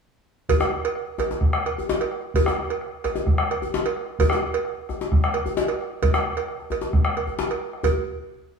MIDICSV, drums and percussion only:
0, 0, Header, 1, 4, 480
1, 0, Start_track
1, 0, Tempo, 462963
1, 512, Time_signature, 4, 2, 24, 8
1, 4830, Tempo, 452830
1, 9002, End_track
2, 0, Start_track
2, 0, Title_t, "Bombo"
2, 507, Note_on_c, 9, 43, 75
2, 610, Note_off_c, 9, 43, 0
2, 629, Note_on_c, 9, 37, 66
2, 732, Note_off_c, 9, 37, 0
2, 991, Note_on_c, 9, 37, 27
2, 1094, Note_off_c, 9, 37, 0
2, 1231, Note_on_c, 9, 37, 28
2, 1335, Note_off_c, 9, 37, 0
2, 1461, Note_on_c, 9, 37, 26
2, 1461, Note_on_c, 9, 43, 82
2, 1565, Note_off_c, 9, 37, 0
2, 1565, Note_off_c, 9, 43, 0
2, 1588, Note_on_c, 9, 37, 69
2, 1692, Note_off_c, 9, 37, 0
2, 2077, Note_on_c, 9, 37, 27
2, 2181, Note_off_c, 9, 37, 0
2, 2192, Note_on_c, 9, 37, 27
2, 2295, Note_off_c, 9, 37, 0
2, 2428, Note_on_c, 9, 43, 82
2, 2532, Note_off_c, 9, 43, 0
2, 2553, Note_on_c, 9, 37, 69
2, 2657, Note_off_c, 9, 37, 0
2, 2916, Note_on_c, 9, 37, 28
2, 3020, Note_off_c, 9, 37, 0
2, 3152, Note_on_c, 9, 37, 29
2, 3256, Note_off_c, 9, 37, 0
2, 3385, Note_on_c, 9, 37, 27
2, 3385, Note_on_c, 9, 43, 88
2, 3489, Note_off_c, 9, 37, 0
2, 3489, Note_off_c, 9, 43, 0
2, 3507, Note_on_c, 9, 37, 71
2, 3610, Note_off_c, 9, 37, 0
2, 3995, Note_on_c, 9, 37, 29
2, 4099, Note_off_c, 9, 37, 0
2, 4109, Note_on_c, 9, 37, 28
2, 4213, Note_off_c, 9, 37, 0
2, 4342, Note_on_c, 9, 43, 81
2, 4445, Note_off_c, 9, 43, 0
2, 4454, Note_on_c, 9, 37, 71
2, 4558, Note_off_c, 9, 37, 0
2, 4821, Note_on_c, 9, 37, 30
2, 4926, Note_off_c, 9, 37, 0
2, 5075, Note_on_c, 9, 37, 27
2, 5181, Note_off_c, 9, 37, 0
2, 5316, Note_on_c, 9, 37, 28
2, 5316, Note_on_c, 9, 43, 91
2, 5422, Note_off_c, 9, 37, 0
2, 5422, Note_off_c, 9, 43, 0
2, 5444, Note_on_c, 9, 37, 72
2, 5550, Note_off_c, 9, 37, 0
2, 5928, Note_on_c, 9, 37, 28
2, 6034, Note_off_c, 9, 37, 0
2, 6050, Note_on_c, 9, 37, 29
2, 6156, Note_off_c, 9, 37, 0
2, 6283, Note_on_c, 9, 43, 91
2, 6389, Note_off_c, 9, 43, 0
2, 6401, Note_on_c, 9, 37, 75
2, 6507, Note_off_c, 9, 37, 0
2, 6649, Note_on_c, 9, 37, 30
2, 6755, Note_off_c, 9, 37, 0
2, 6765, Note_on_c, 9, 37, 30
2, 6871, Note_off_c, 9, 37, 0
2, 7239, Note_on_c, 9, 37, 28
2, 7239, Note_on_c, 9, 43, 88
2, 7345, Note_off_c, 9, 37, 0
2, 7345, Note_off_c, 9, 43, 0
2, 7361, Note_on_c, 9, 37, 70
2, 7467, Note_off_c, 9, 37, 0
2, 7721, Note_on_c, 9, 37, 27
2, 7827, Note_off_c, 9, 37, 0
2, 7851, Note_on_c, 9, 37, 28
2, 7957, Note_off_c, 9, 37, 0
2, 8089, Note_on_c, 9, 37, 28
2, 8195, Note_off_c, 9, 37, 0
2, 8198, Note_on_c, 9, 43, 75
2, 8304, Note_off_c, 9, 43, 0
2, 9002, End_track
3, 0, Start_track
3, 0, Title_t, "Djembe"
3, 510, Note_on_c, 9, 64, 69
3, 614, Note_off_c, 9, 64, 0
3, 625, Note_on_c, 9, 62, 57
3, 625, Note_on_c, 9, 63, 54
3, 729, Note_off_c, 9, 62, 0
3, 729, Note_off_c, 9, 63, 0
3, 746, Note_on_c, 9, 62, 23
3, 850, Note_off_c, 9, 62, 0
3, 1228, Note_on_c, 9, 62, 19
3, 1228, Note_on_c, 9, 64, 66
3, 1331, Note_off_c, 9, 62, 0
3, 1331, Note_off_c, 9, 64, 0
3, 1357, Note_on_c, 9, 62, 52
3, 1357, Note_on_c, 9, 63, 52
3, 1460, Note_off_c, 9, 62, 0
3, 1460, Note_off_c, 9, 63, 0
3, 1722, Note_on_c, 9, 62, 24
3, 1826, Note_off_c, 9, 62, 0
3, 1850, Note_on_c, 9, 64, 54
3, 1953, Note_off_c, 9, 64, 0
3, 1964, Note_on_c, 9, 62, 72
3, 1964, Note_on_c, 9, 63, 67
3, 2067, Note_off_c, 9, 62, 0
3, 2067, Note_off_c, 9, 63, 0
3, 2445, Note_on_c, 9, 64, 77
3, 2549, Note_off_c, 9, 64, 0
3, 2569, Note_on_c, 9, 62, 59
3, 2569, Note_on_c, 9, 63, 59
3, 2673, Note_off_c, 9, 62, 0
3, 2673, Note_off_c, 9, 63, 0
3, 2693, Note_on_c, 9, 62, 23
3, 2797, Note_off_c, 9, 62, 0
3, 3159, Note_on_c, 9, 62, 22
3, 3159, Note_on_c, 9, 64, 68
3, 3263, Note_off_c, 9, 62, 0
3, 3263, Note_off_c, 9, 64, 0
3, 3271, Note_on_c, 9, 62, 52
3, 3271, Note_on_c, 9, 63, 58
3, 3374, Note_off_c, 9, 62, 0
3, 3374, Note_off_c, 9, 63, 0
3, 3641, Note_on_c, 9, 62, 23
3, 3745, Note_off_c, 9, 62, 0
3, 3754, Note_on_c, 9, 64, 55
3, 3858, Note_off_c, 9, 64, 0
3, 3878, Note_on_c, 9, 62, 72
3, 3878, Note_on_c, 9, 63, 69
3, 3982, Note_off_c, 9, 62, 0
3, 3982, Note_off_c, 9, 63, 0
3, 4361, Note_on_c, 9, 64, 75
3, 4465, Note_off_c, 9, 64, 0
3, 4480, Note_on_c, 9, 62, 54
3, 4480, Note_on_c, 9, 63, 58
3, 4584, Note_off_c, 9, 62, 0
3, 4584, Note_off_c, 9, 63, 0
3, 4597, Note_on_c, 9, 62, 23
3, 4701, Note_off_c, 9, 62, 0
3, 5079, Note_on_c, 9, 62, 22
3, 5079, Note_on_c, 9, 64, 64
3, 5185, Note_off_c, 9, 62, 0
3, 5185, Note_off_c, 9, 64, 0
3, 5204, Note_on_c, 9, 62, 53
3, 5204, Note_on_c, 9, 63, 56
3, 5310, Note_off_c, 9, 62, 0
3, 5310, Note_off_c, 9, 63, 0
3, 5570, Note_on_c, 9, 62, 24
3, 5676, Note_off_c, 9, 62, 0
3, 5676, Note_on_c, 9, 64, 57
3, 5782, Note_off_c, 9, 64, 0
3, 5796, Note_on_c, 9, 62, 70
3, 5796, Note_on_c, 9, 63, 68
3, 5902, Note_off_c, 9, 62, 0
3, 5902, Note_off_c, 9, 63, 0
3, 6277, Note_on_c, 9, 62, 24
3, 6277, Note_on_c, 9, 64, 71
3, 6383, Note_off_c, 9, 62, 0
3, 6383, Note_off_c, 9, 64, 0
3, 6401, Note_on_c, 9, 62, 57
3, 6401, Note_on_c, 9, 63, 60
3, 6507, Note_off_c, 9, 62, 0
3, 6507, Note_off_c, 9, 63, 0
3, 6884, Note_on_c, 9, 62, 22
3, 6990, Note_off_c, 9, 62, 0
3, 6997, Note_on_c, 9, 62, 21
3, 6997, Note_on_c, 9, 64, 66
3, 7103, Note_off_c, 9, 62, 0
3, 7103, Note_off_c, 9, 64, 0
3, 7116, Note_on_c, 9, 62, 56
3, 7116, Note_on_c, 9, 63, 58
3, 7222, Note_off_c, 9, 62, 0
3, 7222, Note_off_c, 9, 63, 0
3, 7600, Note_on_c, 9, 62, 22
3, 7600, Note_on_c, 9, 64, 55
3, 7706, Note_off_c, 9, 62, 0
3, 7706, Note_off_c, 9, 64, 0
3, 7721, Note_on_c, 9, 62, 81
3, 7721, Note_on_c, 9, 63, 74
3, 7827, Note_off_c, 9, 62, 0
3, 7827, Note_off_c, 9, 63, 0
3, 8196, Note_on_c, 9, 64, 76
3, 8302, Note_off_c, 9, 64, 0
3, 9002, End_track
4, 0, Start_track
4, 0, Title_t, "Drums"
4, 513, Note_on_c, 9, 56, 67
4, 616, Note_off_c, 9, 56, 0
4, 880, Note_on_c, 9, 56, 53
4, 984, Note_off_c, 9, 56, 0
4, 1240, Note_on_c, 9, 56, 50
4, 1343, Note_off_c, 9, 56, 0
4, 1723, Note_on_c, 9, 56, 45
4, 1826, Note_off_c, 9, 56, 0
4, 2084, Note_on_c, 9, 56, 45
4, 2187, Note_off_c, 9, 56, 0
4, 2444, Note_on_c, 9, 56, 59
4, 2547, Note_off_c, 9, 56, 0
4, 2803, Note_on_c, 9, 56, 44
4, 2907, Note_off_c, 9, 56, 0
4, 3155, Note_on_c, 9, 56, 51
4, 3259, Note_off_c, 9, 56, 0
4, 3640, Note_on_c, 9, 56, 47
4, 3743, Note_off_c, 9, 56, 0
4, 3999, Note_on_c, 9, 56, 50
4, 4103, Note_off_c, 9, 56, 0
4, 4353, Note_on_c, 9, 56, 68
4, 4457, Note_off_c, 9, 56, 0
4, 4709, Note_on_c, 9, 56, 52
4, 4813, Note_off_c, 9, 56, 0
4, 5553, Note_on_c, 9, 56, 49
4, 5659, Note_off_c, 9, 56, 0
4, 5917, Note_on_c, 9, 56, 46
4, 6023, Note_off_c, 9, 56, 0
4, 6279, Note_on_c, 9, 56, 58
4, 6385, Note_off_c, 9, 56, 0
4, 6644, Note_on_c, 9, 56, 45
4, 6750, Note_off_c, 9, 56, 0
4, 7013, Note_on_c, 9, 56, 46
4, 7119, Note_off_c, 9, 56, 0
4, 7491, Note_on_c, 9, 56, 43
4, 7597, Note_off_c, 9, 56, 0
4, 7851, Note_on_c, 9, 56, 43
4, 7957, Note_off_c, 9, 56, 0
4, 8205, Note_on_c, 9, 56, 72
4, 8311, Note_off_c, 9, 56, 0
4, 9002, End_track
0, 0, End_of_file